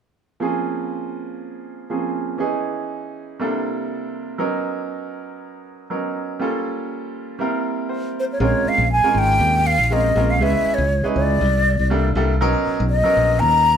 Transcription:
0.40 1.87 F3 medium
0.40 1.87 A#3 soft
0.40 1.88 C4 soft
0.40 1.88 C#4 soft
0.40 1.88 G#4 medium
1.90 2.40 F3 soft
1.90 2.40 A#3 soft
1.90 2.41 C4 soft
1.90 2.37 C#4 soft
1.90 2.39 G#4 soft
2.38 3.37 E3 medium
2.38 3.37 B3 medium
2.38 3.38 C#4 soft
2.38 3.38 D#4 soft
2.38 3.38 G#4 medium
3.39 4.38 C3 medium
3.39 4.38 G3 medium
3.39 4.38 A#3 medium
3.39 4.38 D4 soft
3.39 4.39 E4 soft
3.39 4.39 A4 medium
4.38 5.86 F#3 medium
4.38 5.87 B3 medium
4.38 5.86 C#4 medium
4.38 5.87 D#4 medium
4.38 5.87 A#4 medium
5.90 6.40 F#3 soft
5.90 6.40 B3 soft
5.90 6.40 C#4 soft
5.90 6.41 D#4 soft
5.90 6.40 A#4 medium
6.39 7.37 G3 medium
6.39 7.38 A#3 soft
6.39 7.39 C#4 medium
6.39 7.39 F4 medium
6.39 7.39 A4 medium
7.39 8.38 G3 medium
7.39 8.38 A#3 medium
7.39 8.38 C4 medium
7.39 8.38 E4 medium
7.39 8.39 A#4 medium
7.89 8.36 C5 medium
8.20 8.25 C5 medium
8.32 8.42 C#5 medium
8.40 8.53 A#1 medium
8.40 8.80 G#3 medium
8.40 8.80 C4 medium
8.40 8.81 C#4 medium
8.40 8.81 F4 medium
8.40 8.80 A#4 medium
8.40 8.70 C#5 medium
8.65 8.91 F5 medium
8.65 muted fingered electric bass stroke soft
8.78 9.02 A#1 medium
8.92 9.20 G#5 medium
9.03 9.58 G#3 medium
9.03 9.58 C4 medium
9.03 9.59 C#4 medium
9.03 9.59 F4 medium
9.03 9.59 A#4 medium
9.15 9.39 G#1 medium
9.15 9.68 G5 medium
9.40 9.76 D#2 medium
9.67 9.84 F5 medium
9.79 10.14 A#1 medium
9.84 9.94 F5 medium
9.91 10.07 G#3 medium
9.91 10.07 C4 soft
9.91 10.07 C#4 medium
9.91 10.07 F4 soft
9.91 10.08 A#4 medium
9.91 10.32 D#5 medium
10.15 10.40 A#1 medium
10.15 10.32 G#3 medium
10.15 10.32 C4 medium
10.15 10.32 C#4 medium
10.15 10.32 F4 medium
10.15 10.33 A#4 medium
10.30 10.44 F5 medium
10.40 10.53 C#2 medium
10.40 10.81 G#3 medium
10.40 10.81 B3 medium
10.40 10.81 C#4 medium
10.40 10.81 E4 medium
10.40 10.81 B4 medium
10.40 10.76 E5 medium
10.66 muted fingered electric bass stroke soft
10.74 11.08 C#5 medium
10.78 11.02 C#2 medium
11.03 11.41 G#3 medium
11.03 11.41 C#4 medium
11.03 11.41 D#4 medium
11.03 11.41 E4 medium
11.03 11.41 B4 medium
11.03 muted fingered electric bass stroke soft
11.16 11.39 C#2 medium
11.16 12.12 D5 medium
11.41 11.77 C2 medium
11.79 12.14 C2 medium
11.90 12.07 G3 medium
11.90 12.07 A#3 medium
11.90 12.07 D4 medium
11.90 12.07 E4 medium
11.90 12.07 A4 medium
12.15 12.41 C2 medium
12.15 12.32 G3 medium
12.15 12.33 A#3 medium
12.15 12.33 D4 medium
12.15 12.33 E4 medium
12.15 12.33 A4 medium
12.41 12.54 B1 medium
12.41 12.81 F#3 medium
12.41 12.81 B3 medium
12.41 12.81 C#4 medium
12.41 12.81 D#4 medium
12.41 12.82 A#4 medium
12.67 muted fingered electric bass stroke soft
12.80 13.03 B1 medium
12.90 13.41 D#5 medium
13.04 13.59 F#3 medium
13.04 13.59 B3 medium
13.04 13.59 C#4 medium
13.04 13.60 D#4 medium
13.04 13.60 A#4 medium
13.17 13.40 A#1 medium
13.40 13.77 D#2 medium
13.40 13.77 A#5 medium

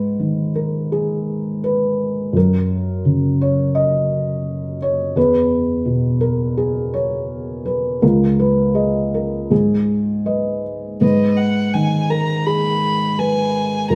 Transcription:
0.00 2.31 G#2 soft
0.00 0.51 B4 soft
0.19 2.35 D#3 soft
0.55 0.88 A#4 soft
0.92 1.59 G#4 soft
1.64 2.31 B4 soft
2.33 5.12 F#2 soft
2.33 3.37 A#4 medium
3.05 5.16 C#3 soft
3.41 3.73 C#5 soft
3.75 4.77 D#5 medium
4.82 5.14 C#5 medium
5.16 7.98 E2 soft
5.16 6.17 B4 medium
5.85 8.02 B2 soft
6.21 6.55 A#4 medium
6.57 6.92 G#4 soft
6.94 7.62 C#5 medium
7.66 7.99 B4 soft
8.02 9.47 C#2 soft
8.02 8.36 A#4 medium
8.39 9.09 B4 medium
8.74 9.46 G#4 soft
8.74 9.46 D#5 soft
9.14 9.49 A#4 soft
9.50 10.98 G#2 soft
9.50 10.61 G#4 soft
10.26 10.97 B4 soft
10.26 10.97 D#5 soft
11.01 13.86 G#2 soft
11.01 12.06 B4 medium
11.01 11.38 D#5 soft
11.37 11.75 F#5 soft
11.74 13.91 D#3 soft
11.74 12.12 G#5 soft
12.10 12.44 A#4 soft
12.10 12.48 A#5 soft
12.46 13.15 G#4 soft
12.46 13.21 B5 soft
13.19 13.87 B4 soft
13.19 13.91 G#5 soft
13.90 13.95 F#2 soft
13.90 13.95 A#4 soft
13.90 13.95 A#5 soft

